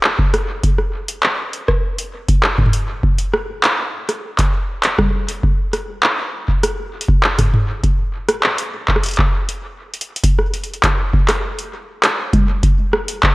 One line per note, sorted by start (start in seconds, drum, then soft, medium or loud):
0.04 clap loud
0.19 kick loud
0.34 cross-stick medium
0.34 closed hi-hat soft
0.64 kick loud
0.64 closed hi-hat medium
0.79 cross-stick soft
1.09 closed hi-hat medium
1.23 clap loud
1.53 closed hi-hat soft
1.68 kick medium
1.68 cross-stick medium
1.98 closed hi-hat medium
2.28 kick loud
2.28 closed hi-hat medium
2.44 cross-stick soft
2.44 clap loud
2.58 kick loud
2.58 mid tom medium
2.66 mid tom medium
2.73 closed hi-hat medium
3.03 kick medium
3.19 closed hi-hat medium
3.34 cross-stick medium
3.64 clap loud
3.64 closed hi-hat soft
4.09 cross-stick medium
4.09 closed hi-hat medium
4.38 kick loud
4.38 clap medium
4.38 closed hi-hat medium
4.83 clap loud
4.83 closed hi-hat medium
4.98 kick medium
4.98 cross-stick medium
4.98 mid tom medium
5.29 closed hi-hat medium
5.43 kick medium
5.74 cross-stick medium
5.74 closed hi-hat soft
6.04 clap loud
6.48 kick medium
6.64 cross-stick medium
6.64 closed hi-hat medium
7.01 closed hi-hat medium
7.08 kick loud
7.24 clap loud
7.38 kick loud
7.38 cross-stick medium
7.38 closed hi-hat medium
7.38 mid tom medium
7.54 mid tom medium
7.83 kick loud
7.83 closed hi-hat medium
8.29 cross-stick medium
8.29 closed hi-hat medium
8.44 clap loud
8.59 closed hi-hat medium
8.88 kick medium
8.88 clap medium
8.96 cross-stick medium
9.04 closed hi-hat medium
9.06 closed hi-hat medium
9.08 closed hi-hat soft
9.11 closed hi-hat soft
9.13 closed hi-hat soft
9.18 kick loud
9.18 clap medium
9.48 closed hi-hat medium
9.94 closed hi-hat medium
10.01 closed hi-hat medium
10.16 closed hi-hat medium
10.23 kick loud
10.23 closed hi-hat loud
10.39 cross-stick medium
10.54 closed hi-hat medium
10.64 closed hi-hat soft
10.74 closed hi-hat soft
10.83 kick loud
10.83 clap loud
10.83 closed hi-hat medium
11.13 kick loud
11.29 cross-stick medium
11.29 clap medium
11.29 closed hi-hat loud
11.59 closed hi-hat medium
12.04 cross-stick medium
12.04 clap loud
12.04 closed hi-hat medium
12.33 kick loud
12.33 closed hi-hat medium
12.33 mid tom medium
12.63 kick loud
12.63 closed hi-hat medium
12.94 cross-stick medium
13.09 closed hi-hat loud
13.23 kick loud
13.23 clap loud